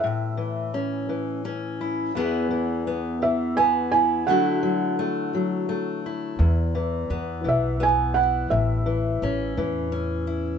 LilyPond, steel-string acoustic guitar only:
\new Staff \with { instrumentName = "Steel-string acoustic guitar" } { \time 6/8 \key e \mixolydian \tempo 4. = 57 << { r4 cis'4 cis'8 e'8 | <e b e' gis'>4 b4 b8 e'8 | <fis a e' fis'>4 a4 a8 e'8 | r4 b4 b8 e'8 |
r4 cis'4 cis'8 e'8 | } \\ { <a, e>8 e4 e4. | e,8 e4 e4. | d8 fis4 fis4. | e,8 e4 e4. |
a,8 e4 e4. | } >> }